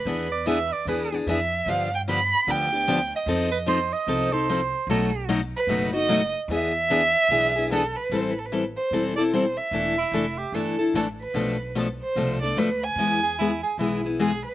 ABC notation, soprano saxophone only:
X:1
M:4/4
L:1/16
Q:"Swing" 1/4=149
K:Ephr
V:1 name="Soprano saxophone"
z2 d2 e2 d2 B3 z4 z | z16 | z2 B2 c2 _e4 c6 | A4- A z8 z3 |
z16 | z16 | z2 E4 G2 A3 z4 z | z16 |
z2 ^G2 E2 G2 E3 z4 z |]